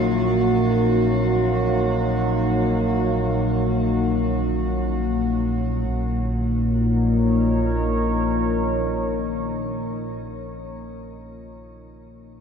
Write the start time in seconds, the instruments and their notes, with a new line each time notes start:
Already playing: synth drone A#1 A#2 F#3 F#4, ambient pad A#3 D#4 F#4 C#5
5.89 synth drone A#1 A#2, ambient pad D#4
6.08 ambient pad A#4
6.24 ambient pad C#5